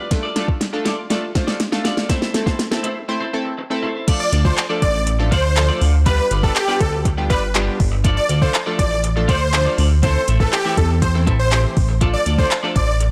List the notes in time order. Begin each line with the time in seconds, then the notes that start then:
0.00 B4 D5
0.11 A3 D4 F4 A4, muted clean electric guitar stroke, kick, snare, closed hi-hat
0.23 F4 A4 D5
0.35 A3 D4 F4 A4 D5, snare, closed hi-hat
0.48 muted clean electric guitar stroke, kick
0.61 muted clean electric guitar stroke, snare, closed hi-hat
0.73 A3 D4 F4 A4, muted clean electric guitar stroke
0.85 F4 A4 D5, snare, closed hi-hat
0.98 muted clean electric guitar stroke
1.10 A3 D4 F4 A4 D5, snare, closed hi-hat
1.23 muted clean electric guitar stroke
1.35 A3 D4 F4 C5, muted clean electric guitar stroke, kick, snare, closed hi-hat
1.47 F4 A4 D5, snare
1.60 muted clean electric guitar stroke, snare, closed hi-hat
1.72 A3 D4 F4 A4, muted clean electric guitar stroke, snare
1.84 F4 A4 D5, snare, closed hi-hat
1.97 F4 A4 D5, snare
2.09 A3 C4 E4 A4 C5, kick, snare, closed hi-hat
2.22 snare
2.34 A3 C4 E4 A4, muted clean electric guitar stroke, snare, closed hi-hat
2.46 E4 A4 C5, kick, snare
2.59 snare, closed hi-hat
2.71 A3 C4 E4 A4, muted clean electric guitar stroke, snare
2.83 E4 A4 C5, closed hi-hat
2.96 muted clean electric guitar stroke
3.08 A3 C4 E4 C5, muted clean electric guitar stroke
3.21 E4 A4 C5
3.33 A3 C4 E4 A4, muted clean electric guitar stroke
3.45 muted clean electric guitar stroke
3.58 muted clean electric guitar stroke
3.70 A3 C4 E4 A4, muted clean electric guitar stroke
3.83 E4 A4 C5
3.95 E4 A4 C5
4.07 F3 A3 D4 F4 A4 D5, kick, closed hi-hat, crash
4.20 D5
4.32 D2 F4 A4 D5, closed hi-hat
4.44 F3 A3 D4 F4 A4 C5 D5, kick
4.57 muted clean electric guitar stroke, clap, closed hi-hat
4.69 F3 A3 D4 F4 A4 D5
4.82 A1 D5, muted clean electric guitar stroke, kick, closed hi-hat
4.94 muted clean electric guitar stroke
5.07 muted clean electric guitar stroke, closed hi-hat
5.19 F3 A3 D4 F4 A4, muted clean electric guitar stroke
5.31 D2 F4 A4 C5 D5, kick, closed hi-hat
5.44 muted clean electric guitar stroke
5.56 F3 A3 D4 F4 A4, muted clean electric guitar stroke, clap, closed hi-hat
5.69 F4 A4 D5
5.81 D2 F4 A4 D5, open hi-hat
5.93 muted clean electric guitar stroke
6.06 G3 B3 D4 F4 G4 B4 D5, kick, closed hi-hat
6.31 G1 F4 B4 D5, closed hi-hat
6.43 G3 B3 D4 F4 G4 A4 B4 D5, kick
6.55 G4, muted clean electric guitar stroke, clap, closed hi-hat
6.68 G3 B3 D4 F4 A4 B4 D5
6.80 D2 A4, muted clean electric guitar stroke, kick, closed hi-hat
6.93 muted clean electric guitar stroke
7.05 muted clean electric guitar stroke, kick, closed hi-hat
7.17 G3 B3 D4 F4 G4, muted clean electric guitar stroke
7.30 G1 F4 B4 D5, kick, closed hi-hat
7.42 muted clean electric guitar stroke
7.55 G3 B3 D4 F4 G4, muted clean electric guitar stroke, clap, closed hi-hat
7.67 muted clean electric guitar stroke
7.80 G1, kick, open hi-hat
7.92 muted clean electric guitar stroke
8.04 F3 A3 D4 F4 A4 D5, kick, closed hi-hat
8.17 D5
8.29 D2 F4 A4 D5, closed hi-hat
8.41 F3 A3 D4 F4 A4 C5 D5, kick
8.54 muted clean electric guitar stroke, clap, closed hi-hat
8.66 F3 A3 D4 F4 A4 D5
8.79 A1 D5, muted clean electric guitar stroke, kick, closed hi-hat
8.91 muted clean electric guitar stroke
9.03 muted clean electric guitar stroke, closed hi-hat
9.16 F3 A3 D4 F4 A4, muted clean electric guitar stroke
9.28 D2 F4 A4 C5 D5, kick, closed hi-hat
9.41 muted clean electric guitar stroke
9.53 F3 A3 D4 F4 C5, muted clean electric guitar stroke, clap, closed hi-hat
9.65 F4 A4 D5
9.78 D2 F4 A4 D5, open hi-hat
9.90 muted clean electric guitar stroke
10.02 E3 A3 C4 E4 A4 C5, kick, closed hi-hat
10.27 A1 C4 E4 A4, closed hi-hat
10.40 E3 A3 C4 E4 A4 B4, kick
10.52 G4, muted clean electric guitar stroke, clap, closed hi-hat
10.65 E3 A3 C4 E4 A4 B4
10.77 E2 A4, muted clean electric guitar stroke, kick, closed hi-hat
10.90 muted clean electric guitar stroke
11.02 C5, muted clean electric guitar stroke, kick, closed hi-hat
11.14 E3 A3 C4 E4 A4, muted clean electric guitar stroke
11.27 A1 C4 E4 A4, kick, closed hi-hat
11.39 C5, muted clean electric guitar stroke
11.52 E3 A3 C4 E4 G4, muted clean electric guitar stroke, clap, closed hi-hat
11.64 muted clean electric guitar stroke
11.77 A1, kick, open hi-hat
11.89 muted clean electric guitar stroke
12.01 F3 A3 D4 F4 A4 D5, kick, closed hi-hat
12.14 D5
12.26 D2 F4 A4 D5, closed hi-hat
12.38 F3 A3 D4 F4 A4 C5 D5, kick
12.51 muted clean electric guitar stroke, clap, closed hi-hat
12.63 F3 A3 D4 F4 A4 D5
12.76 A1 D5, muted clean electric guitar stroke, kick, closed hi-hat
12.88 muted clean electric guitar stroke
13.00 muted clean electric guitar stroke, closed hi-hat